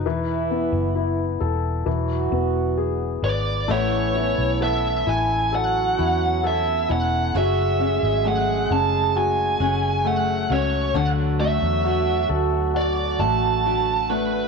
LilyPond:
<<
  \new Staff \with { instrumentName = "Lead electric guitar" } { \time 4/4 \key a \major \tempo 4 = 66 r2. r8 d''8 | cis''4 e''8 gis''8 fis''4 e''8 fis''8 | e''4 fis''8 a''8 gis''4 fis''8 cis''8 | fis''8 e''4 r8 d''8 a''4 b'8 | }
  \new Staff \with { instrumentName = "Grand piano" } { \time 4/4 \key a \major e8 b8 e'8 a'8 e8 b8 gis'8 b'8 | a8 e'8 a'8 e'8 a'8 e'8 a'8 e'8 | fis8 cis'8 a8 cis'8 fis'8 cis'8 a8 cis'8 | d8 a8 fis'8 a'8 fis'8 a8 fis'8 a8 | }
  \new Staff \with { instrumentName = "Steel-string acoustic guitar" } { \time 4/4 \key a \major r1 | <a, e b cis' e'>8 <b cis' e'>8 <e b cis' e'>4. <b cis' e'>8 <e b cis' e'>8 <b cis' e'>8 | <fis, cis fis a cis' fis'>8 <fis a cis' fis'>8 <fis a cis' fis'>4. <fis a cis' fis'>8 <fis a cis' fis'>8 <fis a cis' fis'>8 | <d a d' fis'>8 <a d' fis'>8 <d a d' fis'>4. <a d' fis'>8 <d a d' fis'>8 <a d' fis'>8 | }
  \new Staff \with { instrumentName = "French horn section" } { \time 4/4 \key a \major <e e'>4. r8 <fis fis'>4. r8 | <e e'>4. r8 <fis fis'>4. r8 | <gis gis'>2.~ <gis gis'>8 r8 | <fis fis'>2.~ <fis fis'>8 r8 | }
  \new Staff \with { instrumentName = "Fingered electric bass" } { \clef bass \time 4/4 \key a \major e,,8. fis,,8. e,,8 e,,8 e,,4 gis,,8 | a,,8. b,,8. a,,4 e,4 e,,8 | fis,,8. gis,,8. fis,,4 fis,,4 cis,8 | d,8. e,8. d,4 a,,4. | }
>>